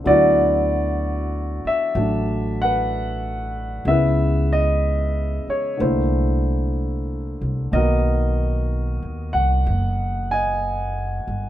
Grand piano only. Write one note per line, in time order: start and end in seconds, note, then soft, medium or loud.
0.04 3.85 D3 soft
0.04 1.93 F#3 soft
0.04 3.86 B3 soft
0.04 3.86 E4 medium
0.04 0.97 D5 medium
0.08 1.93 F#4 medium
1.67 2.64 E5 medium
1.95 3.86 F#3 soft
1.95 3.87 A3 soft
1.95 3.87 D4 soft
2.62 3.85 B4 medium
2.62 3.91 F#5 medium
3.87 5.79 C#3 soft
3.87 5.79 G#3 soft
3.87 5.79 B3 soft
3.87 5.79 E4 soft
3.87 4.48 E5 medium
3.91 5.77 B4 medium
4.53 5.51 D#5 medium
5.50 5.81 C#5 medium
5.77 7.71 D3 soft
5.77 7.72 A3 soft
5.77 7.70 A#3 soft
5.77 7.38 C5 medium
5.82 7.74 E4 soft
7.71 11.49 D#3 soft
7.71 11.49 A#3 soft
7.71 11.49 B3 soft
7.71 9.62 A#4 medium
7.71 8.65 D#5 medium
7.76 11.49 F#4 soft
9.33 10.32 F#5 medium
10.31 11.49 D#5 medium
10.31 11.49 G#5 medium